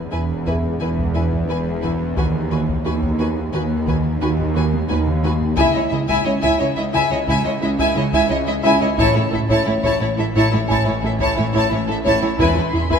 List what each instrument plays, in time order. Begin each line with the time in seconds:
Already playing: synth drone E2, grand piano B4
0.11 double bass section E1, cello section E2, analog synth bass E2, viola section E4, violin section B4 G#5
0.46 analog synth bass E2, viola section E4, grand piano G#4 E5, violin section B4 G#5, taiko
0.80 double bass section E1, cello section E2, analog synth bass E3, viola section E4, violin section B4 G#5
0.98 taiko
1.14 analog synth bass E2, viola section E4, violin section B4 G#5
1.32 taiko
1.48 double bass section E1, cello section E2, analog synth bass E3, viola section E4, violin section B4 G#5
1.82 analog synth bass E3, viola section E4, violin section B4 G#5, taiko
2.17 synth drone D#2, double bass section D#2, cello section D#2, analog synth bass D#3, viola section F#4, violin section B4 G#5, taiko
2.51 analog synth bass D#3, viola section F#4, violin section B4 G#5
2.69 taiko
2.85 cello section D#2, double bass section D#2, analog synth bass D#4, viola section F#4, violin section B4 G#5
3.03 taiko
3.19 analog synth bass D#4, viola section F#4, violin section B4 G#5
3.53 cello section D#2, double bass section D#2, analog synth bass D#3, viola section F#4, violin section B4 G#5
3.87 analog synth bass D#3, viola section F#4, violin section B4 G#5, taiko
4.21 cello section D#2, double bass section D#2, analog synth bass D#4, viola section F#4, violin section B4 G#5
4.39 taiko
4.55 analog synth bass D#3, viola section F#4, violin section B4 G#5
4.73 taiko high
4.88 cello section D#2, double bass section D#2, analog synth bass D#4, viola section F#4, violin section B4 G#5, taiko high
5.07 taiko mid
5.23 analog synth bass D#4, viola section F#4, violin section B4 G#5, taiko high
5.41 taiko low
5.56 cello section C#2, double bass section C#2, synth drone C#2, analog synth bass C#3, viola section E4, grand piano E4 E5, violin section E5 G#5, taiko
5.73 cello section C#2, viola section E4, violin section C#5 D#5
5.90 double bass section C#2, cello section C#2, analog synth bass C#3, viola section E4, violin section D#5 E5
6.07 cello section C#2, viola section E4, violin section E5 G#5, taiko
6.25 cello section C#2, double bass section C#2, analog synth bass C#4, viola section E4, violin section C#5 D#5
6.41 cello section C#2, viola section E4, violin section E5 G#5, taiko
6.59 double bass section C#2, cello section C#2, analog synth bass C#4, viola section E4, violin section C#5 D#5
6.76 cello section C#2, viola section E4, violin section D#5 E5
6.93 cello section C#2, double bass section C#2, analog synth bass C#3, viola section E4, violin section E5 G#5, grand piano G#5
7.11 cello section C#2, viola section E4, violin section C#5 D#5
7.28 double bass section C#2, cello section C#2, analog synth bass C#3, viola section E4, violin section E5 G#5, taiko
7.44 cello section C#2, viola section E4, violin section C#5 D#5
7.62 cello section C#2, double bass section C#2, analog synth bass C#4, viola section E4, violin section D#5 E5
7.79 cello section C#2, viola section E4, violin section E5 G#5, taiko
7.96 cello section C#2, double bass section C#2, analog synth bass C#3, viola section E4, violin section C#5 D#5
8.13 cello section C#2, viola section E4, violin section E5 G#5, taiko
8.30 cello section C#2, double bass section C#2, analog synth bass C#4, viola section E4, violin section C#5 D#5
8.47 cello section C#2, viola section E4, violin section D#5 E5
8.64 double bass section C#2, cello section C#2, analog synth bass C#4, viola section E4, violin section E5 G#5, grand piano B5, taiko
8.81 cello section C#2, viola section E4, violin section C#5 D#5
8.98 double bass section A1, synth drone A1, cello section A2, analog synth bass A2, viola section E4, violin section C#5 A5, taiko
9.15 cello section A2, violin section E4 C#5, viola section E4
9.32 double bass section A1, analog synth bass A2, cello section A2, viola section E4, violin section A4 E5
9.49 cello section A2, viola section E4, violin section C#5 A5, taiko
9.66 double bass section A1, cello section A2, analog synth bass A3, violin section E4 C#5, viola section E4
9.83 cello section A2, viola section E4, violin section C#5 A5, taiko
10.01 double bass section A1, cello section A2, analog synth bass A3, violin section E4 C#5, viola section E4
10.18 cello section A2, viola section E4, violin section A4 E5
10.35 double bass section A1, cello section A2, analog synth bass A2, viola section E4, violin section C#5 A5
10.51 cello section A2, violin section E4 C#5, viola section E4
10.68 double bass section A1, analog synth bass A2, cello section A2, viola section E4, violin section C#5 A5, grand piano G#5, taiko
10.86 cello section A2, violin section E4 C#5, viola section E4
11.02 double bass section A1, cello section A2, analog synth bass A3, viola section E4, violin section A4 E5
11.19 cello section A2, viola section E4, violin section C#5 A5, taiko
11.36 double bass section A1, analog synth bass A2, cello section A2, violin section E4 C#5, viola section E4
11.52 cello section A2, viola section E4, violin section C#5, taiko
11.57 violin section A5
11.70 double bass section A1, cello section A2, analog synth bass A3, viola section E4, violin section E4 C#5
11.87 cello section A2, viola section E4, violin section A4 E5
12.04 double bass section A1, cello section A2, analog synth bass A3, viola section E4, violin section C#5 A5, taiko
12.22 cello section A2, violin section E4 C#5, viola section E4
12.39 double bass section E1, synth drone E2, cello section E2, analog synth bass E2, viola section E4, violin section B4 G#5 B5 C6, taiko
12.56 cello section E2, viola section E4, violin section E4 B4
12.73 double bass section E1, cello section E2, analog synth bass E2, viola section E4, violin section G#4 E5
12.90 cello section E2, viola section E4, violin section B4 G#5, taiko